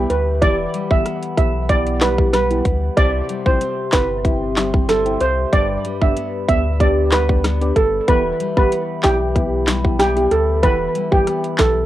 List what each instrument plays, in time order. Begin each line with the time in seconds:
Already playing: nylon-string guitar E3 G3 B3 E4, glass harmonica G4 B4 E5 B5
0.10 sub bass D2, steel pan B4, closed hi-hat
0.41 sub bass E1, nylon-string guitar E3 E4, synth stab B3 E4 G4, steel pan D5, glass harmonica F#5, kick, closed hi-hat
0.74 nylon-string guitar G3, closed hi-hat
0.90 sub bass G1, synth stab B3 E4 G4, steel pan E5, kick
1.06 nylon-string guitar B3, cross-stick, closed hi-hat
1.23 closed hi-hat
1.37 sub bass B1, synth stab B3 E4 G4, steel pan E5, kick, closed hi-hat
1.69 synth stab B3 E4 G4, steel pan D5, kick, closed hi-hat
1.87 closed hi-hat
2.01 nylon-string guitar G3, steel pan B4, snare, clap, closed hi-hat
2.18 synth stab B3 E4 G4, kick
2.33 nylon-string guitar G3 B3 E4, steel pan B4, cross-stick, snare, closed hi-hat
2.50 synth stab B3 E4 G4, closed hi-hat
2.65 sub bass D2, kick, closed hi-hat
2.97 sub bass C2, nylon-string guitar C3 E4, synth stab C4 E4 G4, glass harmonica C5 E5 C6, steel pan D5, kick, closed hi-hat
3.29 nylon-string guitar G3, closed hi-hat
3.46 sub bass A1, synth stab C4 E4 G4, steel pan C5, kick
3.61 nylon-string guitar C4, closed hi-hat
3.92 sub bass G1, synth stab C4 E4 G4, steel pan B4, kick, snare, clap, closed hi-hat
4.24 synth stab C4 E4 G4, kick, closed hi-hat
4.56 nylon-string guitar G3, snare, clap, closed hi-hat
4.73 synth stab C4 E4 G4, kick
4.89 nylon-string guitar G3 C4 E4, steel pan A4, cross-stick, snare, closed hi-hat
5.05 synth stab C4 E4 G4, closed hi-hat
5.21 sub bass C2, steel pan C5, closed hi-hat
5.52 sub bass G1, nylon-string guitar G2 D4, synth stab B3 D4 G4, glass harmonica G4 B4 D5 B5, steel pan D5, kick, closed hi-hat
5.85 nylon-string guitar G3, closed hi-hat
6.01 sub bass F#1, synth stab B3 D4 G4, steel pan E5, kick
6.17 nylon-string guitar B3, closed hi-hat
6.48 sub bass D2, synth stab B3 D4 G4, steel pan E5, kick, closed hi-hat
6.80 synth stab B3 D4 G4, steel pan D5, kick, closed hi-hat
7.12 nylon-string guitar G3, steel pan B4, snare, clap, closed hi-hat
7.29 synth stab B3 D4 G4, kick
7.44 nylon-string guitar G3 B3 D4, cross-stick, snare, closed hi-hat
7.61 synth stab B3 D4 G4, closed hi-hat
7.76 sub bass G1, steel pan A4, kick, closed hi-hat
8.08 sub bass E1, nylon-string guitar E3 E4, synth stab B3 E4 G4, steel pan B4, glass harmonica E5, kick, closed hi-hat
8.40 nylon-string guitar G3, closed hi-hat
8.57 sub bass G1, synth stab B3 E4 G4, steel pan B4, kick
8.72 nylon-string guitar B3, closed hi-hat
9.03 sub bass B1, synth stab B3 E4 G4, steel pan G4, kick, snare, clap, closed hi-hat
9.35 synth stab B3 E4 G4, kick, closed hi-hat
9.67 nylon-string guitar G3, snare, clap, closed hi-hat
9.84 synth stab B3 E4 G4, kick
9.99 nylon-string guitar G3 B3 E4, steel pan G4, cross-stick, snare, closed hi-hat
10.16 synth stab B3 E4 G4, closed hi-hat
10.31 sub bass D2, steel pan A4, closed hi-hat
10.63 sub bass E1, nylon-string guitar E3 E4, synth stab B3 E4 G4, steel pan B4, kick, closed hi-hat
10.95 nylon-string guitar G3, closed hi-hat
11.12 sub bass G1, synth stab B3 E4 G4, steel pan G4, kick
11.27 nylon-string guitar B3, cross-stick, closed hi-hat
11.44 closed hi-hat
11.58 sub bass B1, synth stab B3 E4 G4, steel pan A4, kick, snare, clap, closed hi-hat